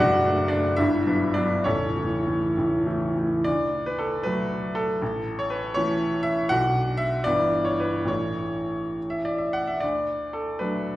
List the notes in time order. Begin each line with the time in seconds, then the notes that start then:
Already playing: D5 F#5
0.00 F#1 F#2 F#4
0.25 A3 D4
0.48 A3 D4 D5
0.76 G1 G2 E4 E5
1.06 F#3 B3 D4
1.34 F#3 B3 D4 D5
1.64 A0 A1 C#4 A4 C#5
1.96 E3 A3
2.27 E3 A3
2.57 A0 A1
2.86 E3 A3
3.16 E3 A3
3.44 D2 D5
3.86 B4
3.99 A4
4.23 F#3 A3 B4
4.75 A4
5.02 A1
5.39 C#5
5.50 B4
5.74 E3 A3 C#4 C#5
6.23 E5
6.49 B1 D3 D4 F#4 F#5
6.97 E5
7.24 G1 E3 B3 E4 D5
7.65 C#5
7.80 B4
8.05 A1 E3 A3 E4 C#5
9.10 E5
9.25 D5
9.38 E5
9.53 F#5
9.67 E5
9.80 D2 D5
10.33 A4
10.59 F#3 A3 D4 B4